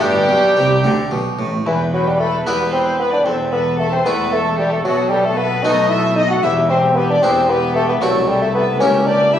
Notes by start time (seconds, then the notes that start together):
Already playing: B3
0.00 G1 G2 G3 D4 G4 G5
0.29 B1 B2
0.56 C2 C3
0.84 D2 D3
1.11 B1 B2
1.39 A1 A2
1.65 E1 E2 E3 E4 B4 G5
1.91 F#3 F#4 B4 G5
2.06 G3 G4
2.18 A3 A4 B4 G5
2.45 E1 E2 B3 E4 G4 B4 G5
2.72 C4 B4 C5 G5
2.98 B3 B4 G5
3.11 D4 D5
3.25 E1 E2 C4 A4 C5 E5
3.51 B3 A4 B4 E5
3.78 A3 A4 E5
3.92 C4 C5
4.05 E1 E2 A3 B3 E4 A4 B4 E5
4.32 A3 A4 E5
4.58 G3 G4 A4 E5
4.72 A3 A4
4.84 B1 B2 F#3 F#4 A4 D#5
5.10 G3 G4 A4 D#5
5.24 A3 A4
5.37 B3 A4 B4 D#5
5.63 B1 B2 A3 B3 D#4 A4 D#5
5.89 E4 A4 D#5 E5
6.16 D#4 A4 D#5
6.30 F#4 F#5
6.43 E1 E2 E4 G4 E5
6.70 C4 G4 C5 E5
6.96 B3 G4 B4 E5
7.10 D4 D5
7.22 E1 E2 B3 C4 E4 G4 C5 E5
7.49 B3 G4 B4 E5
7.75 A3 G4 A4 E5
7.88 B3 B4
8.00 C2 F#3 A3 C4 E4 F#4 A4 E5
8.27 G3 G4 A4 E5
8.40 A3 A4
8.53 B3 A4 B4 E5
8.79 C#2 A#3 C#4 E4 G4 C#5 E5
9.06 D4 G4 D5 E5
9.33 E4 G4 E5